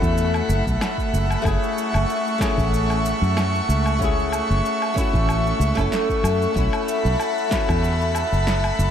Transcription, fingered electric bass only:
0, 0, Header, 1, 2, 480
1, 0, Start_track
1, 0, Key_signature, 3, "minor"
1, 0, Tempo, 638298
1, 1090, Time_signature, 4, 2, 24, 8
1, 6698, End_track
2, 0, Start_track
2, 0, Title_t, "Fingered electric bass"
2, 0, Program_c, 0, 33
2, 14, Note_on_c, 0, 40, 98
2, 305, Note_off_c, 0, 40, 0
2, 367, Note_on_c, 0, 30, 106
2, 452, Note_off_c, 0, 30, 0
2, 493, Note_on_c, 0, 35, 90
2, 567, Note_off_c, 0, 35, 0
2, 850, Note_on_c, 0, 30, 95
2, 1012, Note_off_c, 0, 30, 0
2, 1083, Note_on_c, 0, 30, 88
2, 1170, Note_off_c, 0, 30, 0
2, 1460, Note_on_c, 0, 30, 90
2, 1531, Note_off_c, 0, 30, 0
2, 1938, Note_on_c, 0, 33, 94
2, 2345, Note_off_c, 0, 33, 0
2, 2416, Note_on_c, 0, 42, 78
2, 2706, Note_off_c, 0, 42, 0
2, 2771, Note_on_c, 0, 37, 91
2, 3306, Note_off_c, 0, 37, 0
2, 3384, Note_on_c, 0, 30, 94
2, 3453, Note_off_c, 0, 30, 0
2, 3859, Note_on_c, 0, 33, 100
2, 4147, Note_off_c, 0, 33, 0
2, 4206, Note_on_c, 0, 37, 101
2, 4292, Note_off_c, 0, 37, 0
2, 4340, Note_on_c, 0, 30, 98
2, 4411, Note_off_c, 0, 30, 0
2, 4686, Note_on_c, 0, 42, 108
2, 4850, Note_off_c, 0, 42, 0
2, 4929, Note_on_c, 0, 35, 99
2, 5013, Note_off_c, 0, 35, 0
2, 5298, Note_on_c, 0, 35, 94
2, 5370, Note_off_c, 0, 35, 0
2, 5779, Note_on_c, 0, 40, 99
2, 6186, Note_off_c, 0, 40, 0
2, 6258, Note_on_c, 0, 30, 80
2, 6546, Note_off_c, 0, 30, 0
2, 6607, Note_on_c, 0, 30, 95
2, 6698, Note_off_c, 0, 30, 0
2, 6698, End_track
0, 0, End_of_file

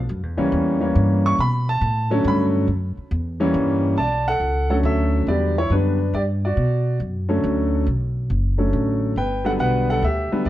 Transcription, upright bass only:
0, 0, Header, 1, 3, 480
1, 0, Start_track
1, 0, Key_signature, 2, "minor"
1, 0, Tempo, 431965
1, 98, Time_signature, 3, 2, 24, 8
1, 11661, End_track
2, 0, Start_track
2, 0, Title_t, "Upright bass"
2, 0, Program_c, 0, 32
2, 101, Note_on_c, 0, 42, 87
2, 257, Note_off_c, 0, 42, 0
2, 257, Note_on_c, 0, 40, 54
2, 412, Note_off_c, 0, 40, 0
2, 418, Note_on_c, 0, 37, 67
2, 566, Note_off_c, 0, 37, 0
2, 577, Note_on_c, 0, 40, 97
2, 1042, Note_off_c, 0, 40, 0
2, 1061, Note_on_c, 0, 43, 97
2, 1523, Note_off_c, 0, 43, 0
2, 1539, Note_on_c, 0, 47, 87
2, 2002, Note_off_c, 0, 47, 0
2, 2013, Note_on_c, 0, 45, 99
2, 2479, Note_off_c, 0, 45, 0
2, 2493, Note_on_c, 0, 43, 99
2, 2959, Note_off_c, 0, 43, 0
2, 2972, Note_on_c, 0, 42, 81
2, 3275, Note_off_c, 0, 42, 0
2, 3456, Note_on_c, 0, 40, 93
2, 3920, Note_off_c, 0, 40, 0
2, 3933, Note_on_c, 0, 43, 95
2, 4398, Note_off_c, 0, 43, 0
2, 4408, Note_on_c, 0, 35, 70
2, 4876, Note_off_c, 0, 35, 0
2, 4887, Note_on_c, 0, 37, 74
2, 5355, Note_off_c, 0, 37, 0
2, 5369, Note_on_c, 0, 38, 91
2, 5836, Note_off_c, 0, 38, 0
2, 5852, Note_on_c, 0, 40, 80
2, 6318, Note_off_c, 0, 40, 0
2, 6333, Note_on_c, 0, 42, 84
2, 6799, Note_off_c, 0, 42, 0
2, 6818, Note_on_c, 0, 43, 87
2, 7281, Note_off_c, 0, 43, 0
2, 7299, Note_on_c, 0, 47, 85
2, 7762, Note_off_c, 0, 47, 0
2, 7776, Note_on_c, 0, 42, 85
2, 8241, Note_off_c, 0, 42, 0
2, 8263, Note_on_c, 0, 38, 92
2, 8725, Note_off_c, 0, 38, 0
2, 8740, Note_on_c, 0, 35, 83
2, 9203, Note_off_c, 0, 35, 0
2, 9222, Note_on_c, 0, 30, 90
2, 9684, Note_off_c, 0, 30, 0
2, 9700, Note_on_c, 0, 33, 88
2, 10163, Note_off_c, 0, 33, 0
2, 10178, Note_on_c, 0, 31, 75
2, 10642, Note_off_c, 0, 31, 0
2, 10658, Note_on_c, 0, 35, 83
2, 11123, Note_off_c, 0, 35, 0
2, 11137, Note_on_c, 0, 38, 90
2, 11439, Note_off_c, 0, 38, 0
2, 11614, Note_on_c, 0, 40, 80
2, 11661, Note_off_c, 0, 40, 0
2, 11661, End_track
3, 0, Start_track
3, 0, Title_t, "Muted upright bass strokes"
3, 3303, Note_on_c, 9, 29, 44
3, 3414, Note_off_c, 9, 29, 0
3, 11468, Note_on_c, 9, 29, 33
3, 11579, Note_off_c, 9, 29, 0
3, 11661, End_track
0, 0, End_of_file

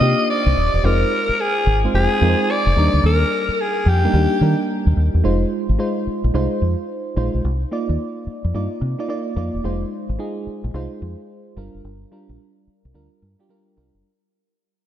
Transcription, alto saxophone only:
0, 0, Header, 1, 2, 480
1, 0, Start_track
1, 0, Tempo, 550459
1, 726, Time_signature, 4, 2, 24, 8
1, 12960, End_track
2, 0, Start_track
2, 0, Title_t, "Alto saxophone"
2, 0, Program_c, 0, 65
2, 0, Note_on_c, 0, 75, 127
2, 255, Note_off_c, 0, 75, 0
2, 262, Note_on_c, 0, 74, 103
2, 744, Note_on_c, 0, 70, 112
2, 757, Note_off_c, 0, 74, 0
2, 1225, Note_on_c, 0, 68, 100
2, 1238, Note_off_c, 0, 70, 0
2, 1560, Note_off_c, 0, 68, 0
2, 1701, Note_on_c, 0, 68, 108
2, 2187, Note_on_c, 0, 74, 108
2, 2201, Note_off_c, 0, 68, 0
2, 2657, Note_off_c, 0, 74, 0
2, 2668, Note_on_c, 0, 70, 105
2, 3146, Note_on_c, 0, 68, 89
2, 3159, Note_off_c, 0, 70, 0
2, 3390, Note_on_c, 0, 67, 98
2, 3403, Note_off_c, 0, 68, 0
2, 4098, Note_off_c, 0, 67, 0
2, 12960, End_track
0, 0, End_of_file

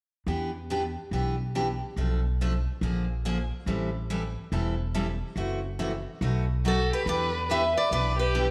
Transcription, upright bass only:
0, 0, Header, 1, 2, 480
1, 0, Start_track
1, 0, Key_signature, 1, "minor"
1, 0, Tempo, 424328
1, 309, Time_signature, 4, 2, 24, 8
1, 9623, End_track
2, 0, Start_track
2, 0, Title_t, "Upright bass"
2, 0, Program_c, 0, 32
2, 300, Note_on_c, 0, 40, 75
2, 1071, Note_off_c, 0, 40, 0
2, 1259, Note_on_c, 0, 35, 64
2, 2031, Note_off_c, 0, 35, 0
2, 2221, Note_on_c, 0, 35, 67
2, 2992, Note_off_c, 0, 35, 0
2, 3182, Note_on_c, 0, 34, 75
2, 3952, Note_off_c, 0, 34, 0
2, 4143, Note_on_c, 0, 33, 74
2, 4913, Note_off_c, 0, 33, 0
2, 5110, Note_on_c, 0, 28, 74
2, 5877, Note_off_c, 0, 28, 0
2, 6058, Note_on_c, 0, 30, 77
2, 6831, Note_off_c, 0, 30, 0
2, 7024, Note_on_c, 0, 35, 82
2, 7794, Note_off_c, 0, 35, 0
2, 7986, Note_on_c, 0, 40, 78
2, 8755, Note_off_c, 0, 40, 0
2, 8948, Note_on_c, 0, 35, 71
2, 9623, Note_off_c, 0, 35, 0
2, 9623, End_track
0, 0, End_of_file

